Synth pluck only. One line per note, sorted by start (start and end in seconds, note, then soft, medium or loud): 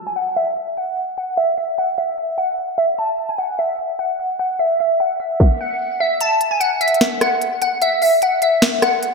0.07 0.15 G#5 medium
0.16 0.34 F#5 medium
0.36 0.54 E5 medium
0.78 1.15 F#5 medium
1.18 1.35 F#5 medium
1.37 1.55 E5 loud
1.58 1.75 E5 medium
1.78 1.96 F#5 medium
1.98 2.36 E5 medium
2.38 2.76 F#5 medium
2.78 2.96 E5 medium
2.99 3.27 A5 loud
3.29 3.38 G#5 medium
3.38 3.56 F#5 medium
3.59 3.77 E5 medium
3.99 4.37 F#5 medium
4.39 4.57 F#5 medium
4.59 4.77 E5 loud
4.80 4.98 E5 medium
5.00 5.18 F#5 medium
5.20 5.58 E5 medium
5.61 5.98 F#5 medium
6.00 6.18 E5 medium
6.21 6.49 A5 loud
6.51 6.60 G#5 medium
6.60 6.78 F#5 medium
6.81 6.99 E5 medium
7.22 7.59 F#5 medium
7.62 7.80 F#5 medium
7.82 8.00 E5 loud
8.02 8.20 E5 medium
8.23 8.40 F#5 medium
8.43 8.80 E5 medium
8.82 9.14 F#5 medium